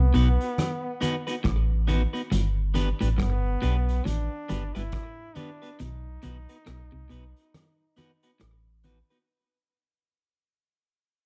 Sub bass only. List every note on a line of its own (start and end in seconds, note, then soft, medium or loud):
0.00 0.13 C2 medium
0.15 0.38 B1 medium
1.46 2.06 A1 loud
2.33 2.93 G1 loud
3.02 3.17 A1 medium
3.19 3.57 G1 loud
3.63 4.01 B1 medium
4.06 4.29 A1 medium
4.50 4.72 G1 medium
4.76 4.91 G1 loud
5.80 6.18 B1 loud
6.24 6.47 B1 loud
6.68 6.90 B1 loud
6.93 7.08 C2 medium
7.11 7.34 B1 medium
8.42 9.02 A1 loud